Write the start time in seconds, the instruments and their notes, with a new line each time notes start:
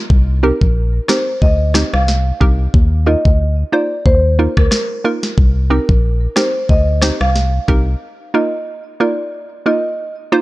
0.10 fm bass C2, kick
0.43 synth pluck C4 D#4 G4 A#4, marimba A#4
0.61 fm bass A#1, kick
1.08 synth pluck C4 D#4 G4 A#4, marimba C5, cross-stick, snare
1.42 fm bass D2, marimba D#5, kick
1.74 synth pluck C4 D#4 G4 C5, cross-stick, snare
1.93 fm bass C2, marimba F5, cross-stick
2.08 snare
2.41 fm bass C2, synth pluck C4 D#4 G4 A#4, kick
2.74 fm bass D#2, kick
3.06 synth pluck A#3 D#4 F4 A#4, marimba D#5
3.25 fm bass D2, kick
3.72 synth pluck A#3 D#4 F4 C5, marimba D5
4.06 fm bass D#2, marimba C5, kick
4.39 synth pluck A#3 D#4 F4 A#4
4.57 fm bass D2, marimba A#4, kick, cross-stick
4.71 marimba A#4, cross-stick, snare
5.04 synth pluck A#3 D#4 F4 A#4
5.23 snare
5.38 fm bass C2, kick
5.70 synth pluck C4 D#4 G4 A#4, marimba A#4
5.89 fm bass A#1, kick
6.36 synth pluck C4 D#4 G4 A#4, marimba C5, cross-stick, snare
6.69 fm bass D2, marimba D#5, kick
7.02 synth pluck C4 D#4 G4 C5, cross-stick, snare
7.21 fm bass C2, marimba F5, cross-stick
7.36 snare
7.68 fm bass C2, synth pluck C4 D#4 G4 A#4, kick
8.34 synth pluck A#3 D#4 F4 A#4, marimba D#5
9.00 synth pluck A#3 D#4 F4 A#4, marimba D5
9.66 synth pluck A#3 D#4 F4 A#4, marimba D#5
10.32 synth pluck A#3 D#4 F4 C5